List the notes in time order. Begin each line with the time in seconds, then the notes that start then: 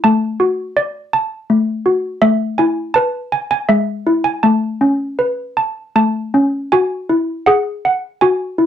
0.04 A3 A5
0.40 F#4
0.77 D5
1.13 A5
1.50 A3
1.86 F#4
2.22 A3 E5
2.58 E4 G#5
2.94 B4 A5
3.32 G#5
3.51 G#5
3.69 G#3 E5
4.07 E4
4.24 G#5
4.43 A3 A5
4.81 C#4
5.19 B4
5.57 A5
5.96 A3 A5
6.34 C#4
6.72 F#4 G#5
7.09 E4
7.46 G#4 F#5
7.85 F#5
8.21 F#4 G#5
8.58 E4